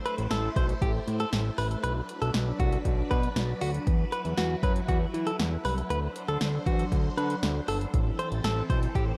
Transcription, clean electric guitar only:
0, 0, Header, 1, 2, 480
1, 0, Start_track
1, 0, Tempo, 508475
1, 1732, Time_signature, 4, 2, 24, 8
1, 8656, End_track
2, 0, Start_track
2, 0, Title_t, "Clean electric guitar"
2, 0, Program_c, 0, 27
2, 53, Note_on_c, 0, 71, 80
2, 135, Note_off_c, 0, 71, 0
2, 294, Note_on_c, 0, 69, 81
2, 458, Note_off_c, 0, 69, 0
2, 534, Note_on_c, 0, 72, 78
2, 616, Note_off_c, 0, 72, 0
2, 774, Note_on_c, 0, 67, 86
2, 856, Note_off_c, 0, 67, 0
2, 1134, Note_on_c, 0, 69, 75
2, 1216, Note_off_c, 0, 69, 0
2, 1494, Note_on_c, 0, 71, 80
2, 1576, Note_off_c, 0, 71, 0
2, 1732, Note_on_c, 0, 71, 102
2, 1815, Note_off_c, 0, 71, 0
2, 2093, Note_on_c, 0, 69, 80
2, 2175, Note_off_c, 0, 69, 0
2, 2453, Note_on_c, 0, 66, 75
2, 2618, Note_off_c, 0, 66, 0
2, 2933, Note_on_c, 0, 71, 78
2, 3098, Note_off_c, 0, 71, 0
2, 3412, Note_on_c, 0, 66, 84
2, 3494, Note_off_c, 0, 66, 0
2, 3893, Note_on_c, 0, 71, 79
2, 3975, Note_off_c, 0, 71, 0
2, 4133, Note_on_c, 0, 66, 79
2, 4298, Note_off_c, 0, 66, 0
2, 4374, Note_on_c, 0, 71, 76
2, 4456, Note_off_c, 0, 71, 0
2, 4614, Note_on_c, 0, 66, 82
2, 4696, Note_off_c, 0, 66, 0
2, 4973, Note_on_c, 0, 69, 75
2, 5055, Note_off_c, 0, 69, 0
2, 5334, Note_on_c, 0, 71, 83
2, 5416, Note_off_c, 0, 71, 0
2, 5573, Note_on_c, 0, 71, 97
2, 5655, Note_off_c, 0, 71, 0
2, 5933, Note_on_c, 0, 69, 81
2, 6015, Note_off_c, 0, 69, 0
2, 6294, Note_on_c, 0, 66, 78
2, 6459, Note_off_c, 0, 66, 0
2, 6773, Note_on_c, 0, 71, 81
2, 6938, Note_off_c, 0, 71, 0
2, 7254, Note_on_c, 0, 69, 87
2, 7336, Note_off_c, 0, 69, 0
2, 7732, Note_on_c, 0, 72, 79
2, 7814, Note_off_c, 0, 72, 0
2, 7973, Note_on_c, 0, 69, 78
2, 8137, Note_off_c, 0, 69, 0
2, 8212, Note_on_c, 0, 72, 78
2, 8295, Note_off_c, 0, 72, 0
2, 8454, Note_on_c, 0, 67, 81
2, 8536, Note_off_c, 0, 67, 0
2, 8656, End_track
0, 0, End_of_file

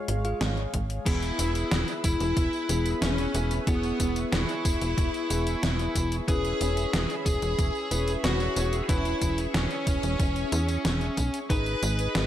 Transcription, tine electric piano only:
0, 0, Header, 1, 2, 480
1, 0, Start_track
1, 0, Tempo, 652174
1, 782, Time_signature, 4, 2, 24, 8
1, 9028, End_track
2, 0, Start_track
2, 0, Title_t, "Tine electric piano"
2, 0, Program_c, 0, 4
2, 182, Note_on_c, 0, 65, 71
2, 183, Note_on_c, 0, 68, 68
2, 183, Note_on_c, 0, 77, 81
2, 282, Note_off_c, 0, 65, 0
2, 282, Note_off_c, 0, 77, 0
2, 283, Note_off_c, 0, 68, 0
2, 783, Note_on_c, 0, 59, 98
2, 783, Note_on_c, 0, 64, 89
2, 783, Note_on_c, 0, 68, 106
2, 1954, Note_off_c, 0, 59, 0
2, 1954, Note_off_c, 0, 64, 0
2, 1954, Note_off_c, 0, 68, 0
2, 1982, Note_on_c, 0, 64, 75
2, 1983, Note_on_c, 0, 59, 81
2, 1983, Note_on_c, 0, 68, 87
2, 2674, Note_off_c, 0, 59, 0
2, 2674, Note_off_c, 0, 64, 0
2, 2674, Note_off_c, 0, 68, 0
2, 2702, Note_on_c, 0, 59, 95
2, 2702, Note_on_c, 0, 64, 89
2, 2703, Note_on_c, 0, 68, 109
2, 3873, Note_off_c, 0, 59, 0
2, 3873, Note_off_c, 0, 64, 0
2, 3874, Note_off_c, 0, 68, 0
2, 3902, Note_on_c, 0, 59, 83
2, 3902, Note_on_c, 0, 64, 73
2, 3902, Note_on_c, 0, 68, 90
2, 4593, Note_off_c, 0, 59, 0
2, 4593, Note_off_c, 0, 64, 0
2, 4593, Note_off_c, 0, 68, 0
2, 4622, Note_on_c, 0, 61, 101
2, 4622, Note_on_c, 0, 64, 91
2, 4622, Note_on_c, 0, 71, 107
2, 5793, Note_off_c, 0, 61, 0
2, 5793, Note_off_c, 0, 64, 0
2, 5793, Note_off_c, 0, 71, 0
2, 5823, Note_on_c, 0, 61, 82
2, 5823, Note_on_c, 0, 64, 73
2, 5823, Note_on_c, 0, 71, 90
2, 6514, Note_off_c, 0, 61, 0
2, 6514, Note_off_c, 0, 64, 0
2, 6514, Note_off_c, 0, 71, 0
2, 6543, Note_on_c, 0, 71, 108
2, 6544, Note_on_c, 0, 61, 98
2, 6544, Note_on_c, 0, 64, 88
2, 7714, Note_off_c, 0, 61, 0
2, 7714, Note_off_c, 0, 64, 0
2, 7714, Note_off_c, 0, 71, 0
2, 7863, Note_on_c, 0, 61, 73
2, 7863, Note_on_c, 0, 64, 68
2, 7863, Note_on_c, 0, 73, 82
2, 7963, Note_off_c, 0, 61, 0
2, 7963, Note_off_c, 0, 64, 0
2, 7963, Note_off_c, 0, 73, 0
2, 8463, Note_on_c, 0, 63, 97
2, 8464, Note_on_c, 0, 68, 88
2, 8464, Note_on_c, 0, 71, 106
2, 9028, Note_off_c, 0, 63, 0
2, 9028, Note_off_c, 0, 68, 0
2, 9028, Note_off_c, 0, 71, 0
2, 9028, End_track
0, 0, End_of_file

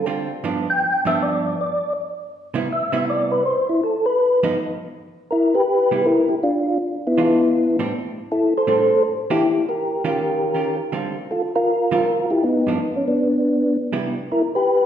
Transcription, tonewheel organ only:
0, 0, Header, 1, 2, 480
1, 0, Start_track
1, 0, Key_signature, 0, "major"
1, 0, Tempo, 374532
1, 557, Time_signature, 4, 2, 24, 8
1, 19043, End_track
2, 0, Start_track
2, 0, Title_t, "Tonewheel organ"
2, 0, Program_c, 0, 16
2, 898, Note_on_c, 0, 79, 117
2, 1330, Note_off_c, 0, 79, 0
2, 1373, Note_on_c, 0, 76, 122
2, 1524, Note_off_c, 0, 76, 0
2, 1570, Note_on_c, 0, 74, 92
2, 1991, Note_off_c, 0, 74, 0
2, 2061, Note_on_c, 0, 74, 96
2, 2476, Note_off_c, 0, 74, 0
2, 3493, Note_on_c, 0, 76, 90
2, 3911, Note_off_c, 0, 76, 0
2, 3971, Note_on_c, 0, 74, 106
2, 4245, Note_off_c, 0, 74, 0
2, 4253, Note_on_c, 0, 71, 100
2, 4401, Note_off_c, 0, 71, 0
2, 4430, Note_on_c, 0, 72, 98
2, 4714, Note_off_c, 0, 72, 0
2, 4733, Note_on_c, 0, 64, 77
2, 4881, Note_off_c, 0, 64, 0
2, 4915, Note_on_c, 0, 69, 88
2, 5197, Note_off_c, 0, 69, 0
2, 5201, Note_on_c, 0, 71, 115
2, 5639, Note_off_c, 0, 71, 0
2, 6801, Note_on_c, 0, 70, 83
2, 6822, Note_on_c, 0, 64, 74
2, 7098, Note_off_c, 0, 64, 0
2, 7107, Note_on_c, 0, 71, 109
2, 7114, Note_on_c, 0, 67, 79
2, 7118, Note_off_c, 0, 70, 0
2, 7712, Note_off_c, 0, 67, 0
2, 7762, Note_on_c, 0, 70, 91
2, 7771, Note_on_c, 0, 64, 72
2, 7773, Note_off_c, 0, 71, 0
2, 8052, Note_off_c, 0, 64, 0
2, 8061, Note_on_c, 0, 67, 82
2, 8068, Note_on_c, 0, 64, 62
2, 8079, Note_off_c, 0, 70, 0
2, 8138, Note_off_c, 0, 67, 0
2, 8143, Note_off_c, 0, 64, 0
2, 8243, Note_on_c, 0, 65, 85
2, 8245, Note_on_c, 0, 62, 59
2, 8685, Note_off_c, 0, 65, 0
2, 8686, Note_off_c, 0, 62, 0
2, 9060, Note_on_c, 0, 59, 57
2, 9060, Note_on_c, 0, 64, 83
2, 9953, Note_off_c, 0, 59, 0
2, 9953, Note_off_c, 0, 64, 0
2, 10659, Note_on_c, 0, 69, 83
2, 10660, Note_on_c, 0, 64, 69
2, 10939, Note_off_c, 0, 64, 0
2, 10939, Note_off_c, 0, 69, 0
2, 10990, Note_on_c, 0, 69, 80
2, 10991, Note_on_c, 0, 72, 109
2, 11573, Note_off_c, 0, 69, 0
2, 11574, Note_off_c, 0, 72, 0
2, 11931, Note_on_c, 0, 67, 86
2, 11935, Note_on_c, 0, 64, 66
2, 12370, Note_off_c, 0, 64, 0
2, 12409, Note_off_c, 0, 67, 0
2, 12416, Note_on_c, 0, 70, 78
2, 12425, Note_on_c, 0, 67, 59
2, 13792, Note_off_c, 0, 70, 0
2, 13797, Note_off_c, 0, 67, 0
2, 14492, Note_on_c, 0, 69, 86
2, 14506, Note_on_c, 0, 65, 72
2, 14630, Note_off_c, 0, 69, 0
2, 14640, Note_off_c, 0, 65, 0
2, 14810, Note_on_c, 0, 70, 107
2, 14813, Note_on_c, 0, 65, 82
2, 15711, Note_off_c, 0, 65, 0
2, 15771, Note_on_c, 0, 64, 66
2, 15778, Note_on_c, 0, 67, 82
2, 15789, Note_off_c, 0, 70, 0
2, 15918, Note_off_c, 0, 64, 0
2, 15934, Note_on_c, 0, 63, 79
2, 15937, Note_off_c, 0, 67, 0
2, 15945, Note_on_c, 0, 59, 68
2, 16373, Note_off_c, 0, 63, 0
2, 16379, Note_off_c, 0, 59, 0
2, 16616, Note_on_c, 0, 61, 53
2, 16722, Note_off_c, 0, 61, 0
2, 16759, Note_on_c, 0, 59, 58
2, 16762, Note_on_c, 0, 62, 78
2, 17644, Note_off_c, 0, 59, 0
2, 17645, Note_off_c, 0, 62, 0
2, 18349, Note_on_c, 0, 70, 92
2, 18351, Note_on_c, 0, 64, 76
2, 18483, Note_off_c, 0, 70, 0
2, 18485, Note_off_c, 0, 64, 0
2, 18649, Note_on_c, 0, 71, 108
2, 18661, Note_on_c, 0, 67, 85
2, 19043, Note_off_c, 0, 67, 0
2, 19043, Note_off_c, 0, 71, 0
2, 19043, End_track
0, 0, End_of_file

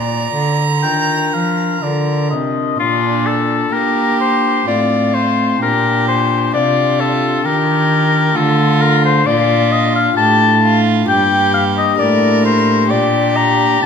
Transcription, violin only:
0, 0, Header, 1, 2, 480
1, 0, Start_track
1, 0, Key_signature, -2, "major"
1, 0, Tempo, 985222
1, 1359, Time_signature, 3, 2, 24, 8
1, 1360, Tempo, 940439
1, 2800, Tempo, 913242
1, 7134, End_track
2, 0, Start_track
2, 0, Title_t, "Violin"
2, 0, Program_c, 0, 40
2, 0, Note_on_c, 0, 82, 78
2, 1106, Note_off_c, 0, 82, 0
2, 1364, Note_on_c, 0, 62, 63
2, 1820, Note_off_c, 0, 62, 0
2, 1841, Note_on_c, 0, 67, 73
2, 2322, Note_on_c, 0, 65, 55
2, 2330, Note_off_c, 0, 67, 0
2, 2801, Note_off_c, 0, 65, 0
2, 2805, Note_on_c, 0, 67, 64
2, 3281, Note_off_c, 0, 67, 0
2, 3291, Note_on_c, 0, 65, 63
2, 3762, Note_off_c, 0, 65, 0
2, 3770, Note_on_c, 0, 67, 68
2, 4242, Note_on_c, 0, 65, 76
2, 4250, Note_off_c, 0, 67, 0
2, 4715, Note_off_c, 0, 65, 0
2, 4718, Note_on_c, 0, 65, 72
2, 5186, Note_off_c, 0, 65, 0
2, 5192, Note_on_c, 0, 67, 64
2, 5429, Note_off_c, 0, 67, 0
2, 5436, Note_on_c, 0, 65, 72
2, 5671, Note_off_c, 0, 65, 0
2, 5676, Note_on_c, 0, 67, 77
2, 6146, Note_off_c, 0, 67, 0
2, 6150, Note_on_c, 0, 70, 76
2, 6625, Note_off_c, 0, 70, 0
2, 6632, Note_on_c, 0, 67, 77
2, 7134, Note_off_c, 0, 67, 0
2, 7134, End_track
0, 0, End_of_file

